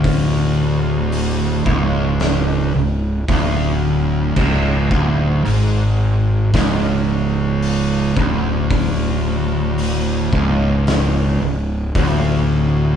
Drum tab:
CC |--------|x-------|--------|
HH |o-o-o-o-|--o-o-o-|o-o-o-o-|
SD |----o---|----o---|----o---|
BD |o--o--o-|oo--o--o|o--o--o-|